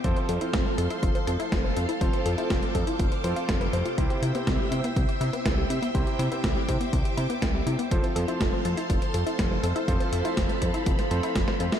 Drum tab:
HH |xxxxx-xxxxxxx-xx|xxxxxxxxxxxxxxxx|xxxxx-xxxxxxx-xx|xxxxx-xxxxxxx-xx|
SD |----o-------o---|----o-------o---|----o-------o---|----o-------o---|
BD |o---o---o---o---|o---o-o-o---o---|o---o---o---o---|o---o-o-o---o---|

HH |xxxxx-xxxxxxx-xx|xxxxxxxxxxxxx-xx|
SD |----o-------o---|----o----o--oo-o|
BD |o---o---o---o---|o---o-o-o---o---|